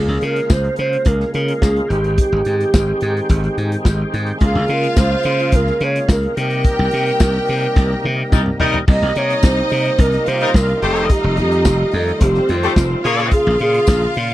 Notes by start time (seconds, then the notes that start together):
Already playing: C#3 G#3 A#3 F4 G#4
0.08 C#2
0.21 C#3 A#4, closed hi-hat
0.36 closed hi-hat
0.50 C#2 C5, kick, snare, tambourine
0.64 closed hi-hat
0.76 C#3 C5, closed hi-hat
0.93 closed hi-hat
1.05 C#2 A#4, kick, closed hi-hat
1.20 snare
1.34 C#3 A#4, closed hi-hat
1.48 closed hi-hat
1.62 C#2 G#4, kick, snare, tambourine
1.76 closed hi-hat
1.89 G#1 D#3 C4 G4, closed hi-hat
2.04 closed hi-hat
2.18 kick, closed hi-hat
2.32 G#1
2.45 G#2, closed hi-hat
2.60 closed hi-hat
2.74 G#1, kick, snare, tambourine
3.01 G#2, closed hi-hat
3.17 closed hi-hat
3.29 G#1, kick, closed hi-hat
3.44 closed hi-hat
3.58 G#2, closed hi-hat
3.72 closed hi-hat
3.85 G#1, kick, snare, tambourine
4.14 G#2, closed hi-hat
4.26 closed hi-hat
4.40 C#2 C#3 A#3 F4 G#4 F5, kick, closed hi-hat
4.55 C#2
4.68 C#3, closed hi-hat
4.73 A#4
4.84 closed hi-hat
4.97 C#2 C5, kick, snare, tambourine
5.23 C#3, closed hi-hat
5.39 closed hi-hat
5.52 C#2, kick, closed hi-hat
5.56 A#4
5.67 snare
5.80 C#3 C#5, closed hi-hat
5.96 closed hi-hat
6.08 C#2 A#4, kick, snare, tambourine
6.23 closed hi-hat
6.36 C3 G3 A#3 D#4 G4 A#4 G5, closed hi-hat
6.50 closed hi-hat
6.64 kick, closed hi-hat
6.79 C2
6.91 C3, closed hi-hat
7.06 closed hi-hat
7.20 C2, kick, snare, tambourine
7.46 C3, open hi-hat
7.63 closed hi-hat
7.76 C2, kick, snare
8.04 C3, high tom
8.32 C2 G3 D#4 A#4, kick, mid tom, tambourine
8.46 mid tom
8.59 C3 G3 D#4 A#4, floor tom
8.74 floor tom
8.88 C2 C3 G3 A#3 D#4 D#5, kick, crash
9.02 C2, closed hi-hat
9.16 C3 C#5, closed hi-hat
9.30 closed hi-hat
9.43 C2 C5, kick, snare, tambourine
9.57 closed hi-hat
9.69 C3, open hi-hat
9.86 closed hi-hat
9.98 C2 A#4, kick, closed hi-hat
10.12 snare, closed hi-hat
10.26 C3 F4 C5 F5, closed hi-hat
10.40 G3 D#4 A#4, closed hi-hat
10.54 C2 A#4, kick, snare, tambourine
10.69 closed hi-hat
10.81 F1 D#3 G3 A3 D#4 F4 G4 A4 C5 D#5, closed hi-hat
10.96 closed hi-hat
11.09 G4, kick, closed hi-hat
11.24 F1
11.37 F2 G4, closed hi-hat
11.52 closed hi-hat
11.65 F1, kick, snare, tambourine
11.92 F2 A4, open hi-hat
12.08 closed hi-hat
12.21 F1 C4 G4 C5, kick, closed hi-hat
12.35 snare
12.49 F2 F4, closed hi-hat
12.63 A3 G4 C5, closed hi-hat
12.76 F1, kick, snare, tambourine
13.04 A#2 C#3 A#3 F4 G#4 C#5 F5, closed hi-hat
13.18 closed hi-hat
13.31 G#4, kick, closed hi-hat
13.47 A#1
13.59 A#2 G#4, closed hi-hat
13.74 closed hi-hat
13.87 A#1, kick, snare, tambourine
14.02 closed hi-hat
14.14 A#2, open hi-hat
14.30 closed hi-hat